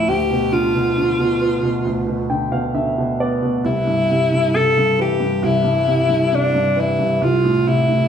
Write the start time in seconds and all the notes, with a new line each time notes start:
Already playing: E4
0.08 D2 G4
0.31 B2
0.52 D3 F4
0.75 B2
0.97 D3
1.19 B2
1.41 B3
1.62 B2
1.85 D2
2.07 B2
2.30 D3 G5
2.52 B2 F5
2.74 D3 E5
2.98 B2
3.20 B3 D5
3.42 B2
3.64 C2 E4
3.87 G2
4.10 C3
4.32 G2
4.54 C3 A4
4.77 G2
4.99 E3 G4
5.20 G2
5.42 C2 E4
5.64 G2
5.87 C3
6.09 G2
6.32 C3 D4
6.55 G2
6.76 E3 E4
6.99 G2
7.21 C2 F4
7.44 A2
7.67 C3 E4
7.89 A2